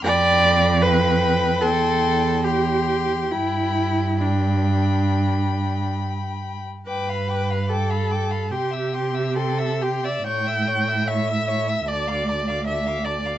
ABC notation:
X:1
M:4/4
L:1/16
Q:1/4=72
K:Gmix
V:1 name="Violin"
b4 b4 c'4 c'4 | b4 b8- b3 z | d' b d' b d' b d' b c' e' c' e' c' e' c' e' | ^c' e' c' e' c' e' c' e' a d' a d' a d' a d' |]
V:2 name="Violin"
g4 g4 g4 g4 | g4 g8- g3 z | g f g f g f g f g e g e g e g e | ^c e c e c e c e d f d f d f d f |]
V:3 name="Viola"
d4 B4 A4 G4 | E4 D8 z4 | B4 A4 G4 A2 G d | g4 e4 d4 e2 d2 |]
V:4 name="Cello" clef=bass
F,,8 E,,8 | G,,12- G,,3 z | G,,8 C,8 | A,,8 D,,8 |]